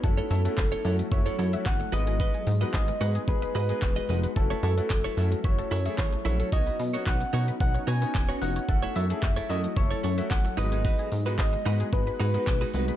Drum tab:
HH |-xox-xox-xox-xox|-xox-xox-xox-xox|-xox-xox-xox-xox|-xox-xox-xox-xox|
SH |xxxxxxxxxxxxxxxx|xxxxxxxxxxxxxxxx|xxxxxxxxxxxxxxxx|xxxxxxxxxxxxxxxx|
CP |----x-------x---|----x-------x---|----x-------x---|----x-------x---|
BD |o---o---o---o---|o---o---o---o---|o---o---o---o---|o---o---o---o---|

HH |-xox-xox-xox-xox|-xox-xox-xox-xox|
SH |xxxxxxxxxxxxxxxx|xxxxxxxxxxxxxxxx|
CP |----x-------x---|----x-------x---|
BD |o---o---o---o---|o---o---o---o---|